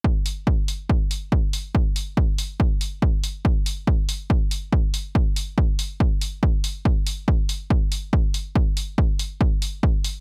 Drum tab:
HH |-o-o-o-o|-o-o-o-o|-o-o-o-o|-o-o-o-o|
BD |o-o-o-o-|o-o-o-o-|o-o-o-o-|o-o-o-o-|

HH |-o-o-o-o|-o-o-o-o|
BD |o-o-o-o-|o-o-o-o-|